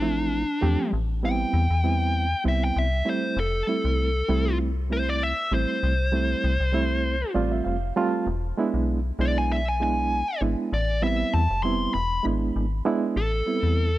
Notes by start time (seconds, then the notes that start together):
Already playing: A1 D4
0.01 F3 A3 C4 E4
0.61 E2 F3 A3 C4 G4
0.93 A1
1.23 G3 B3 C4 E4 G5
1.53 E2
1.70 E2
1.84 G3 B3 C4 E4
2.44 C2 G3 B3 C4 E4
2.48 E5
2.64 G5
2.76 C2 E5
3.05 G3 A3 C4 E4
3.09 C5
3.37 F1 A4
3.67 G3 A3 C4 E4
3.84 C2
4.29 C2 G3 A3 C4 E4
4.90 G3 A3 C4 E4 C5
5.09 D5
5.23 E5
5.51 A1 G3 A3 C4 E4 C5
5.83 C2
6.12 G3 A3 C4 E4
6.44 C2
6.60 C2
6.72 G3 A3 C4 E4
7.34 A1 G3 A3 C4 F4 D5
7.52 E5
7.65 F1 F5
7.96 G3 A3 C4 F4 A5
8.27 E1
8.57 G#3 B3 D4 E4
8.74 B1
9.19 B1 G#3 B3 D4 E4 D5
9.38 G#5
9.52 E5
9.68 G#5
9.80 G#3 B3 D4 E4 G#5
10.41 G#1 G#3 B3 D4 E4
10.73 A1 D5
11.02 G3 B3 C4 E4 E5
11.34 E2 A5
11.50 F1
11.63 G3 B3 C4 E4 C6
11.94 E1 B5
12.23 G#1 G#3 B3 D4 E4
12.56 G#1
12.85 G#3 B3 D4 E4
13.16 A1 A4
13.46 G3 B3 C4 E4
13.63 E2